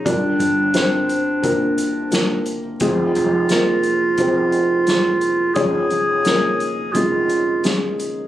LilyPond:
<<
  \new Staff \with { instrumentName = "Clarinet" } { \time 4/4 \key f \minor \tempo 4 = 87 d'2.~ d'8 r8 | f'1 | aes'2 f'4. r8 | }
  \new Staff \with { instrumentName = "Felt piano" } { \time 4/4 \key f \minor << { <d' f' bes' d''>4 <c' c''>4 <bes d' bes'>4 <bes f' bes'>8. r16 | <aes c' f' aes'>4 <bes bes'>4 <c' c''>2 | <des' aes' des''>4 <bes bes'>4 <aes aes'>4 <aes aes'>8. r16 | } \\ { g4 <f' g' bes'>4 <f' g'>4 g'4 | f4 <f' aes' c''>4 <f' aes'>4 <f' aes' c''>4 | f4 <des' ees' f'>4 <des' ees' f'>4 <des' ees' f'>4 | } >> }
  \new Staff \with { instrumentName = "Upright bass" } { \clef bass \time 4/4 \key f \minor g,,8 g,,4. g,,2 | f,,8 f,,4. f,,2 | f,,8 f,,4. f,,2 | }
  \new DrumStaff \with { instrumentName = "Drums" } \drummode { \time 4/4 <hh bd>8 hh8 <hh sn>8 hh8 <hh bd>8 hh8 <hh sn>8 hh8 | <hh bd>8 hh8 <hh sn>8 hh8 <hh bd>8 hh8 <hh sn>8 hh8 | <hh bd>8 hh8 <hh sn>8 hh8 <hh bd>8 hh8 <hh sn>8 hh8 | }
>>